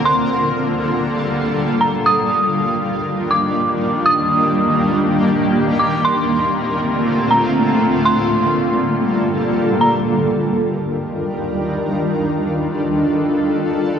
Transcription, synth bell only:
\new Staff \with { instrumentName = "Synth bell" } { \time 4/4 \key ees \lydian \tempo 4 = 120 c'''2 r4. bes''8 | ees'''2~ ees'''8 d'''4. | ees'''2 r4. d'''8 | c'''2~ c'''8 bes''4. |
c'''2 r4. bes''8 | r1 | r1 | }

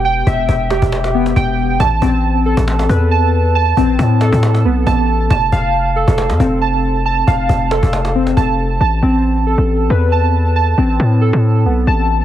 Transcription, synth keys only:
\new Staff \with { instrumentName = "Synth keys" } { \time 4/4 \key a \minor \tempo 4 = 137 <b g' g''>8 e''4 g'4 b8 g''4 | a''8 c'4 a'4 b'8 a''4 | a''8 c'4 a'4 b8 a''4 | a''8 f''4 a'4 c'8 a''4 |
a''8 f''4 a'4 c'8 a''4 | a''8 c'4 a'4 b'8 a''4 | a''8 c'4 a'4 b8 a''4 | }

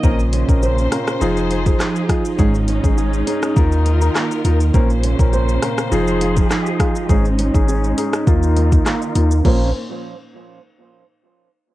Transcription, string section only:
\new Staff \with { instrumentName = "String section" } { \time 4/4 \key bes \minor \tempo 4 = 102 <des bes c''>2 <f ees' aes'>2 | <aes des'>2 <ees f' bes'>2 | <des bes c''>2 <f ees' aes'>2 | <aes des'>2 <ees ees' f' bes'>2 |
<bes, bes des' c''>8 r2. r8 | }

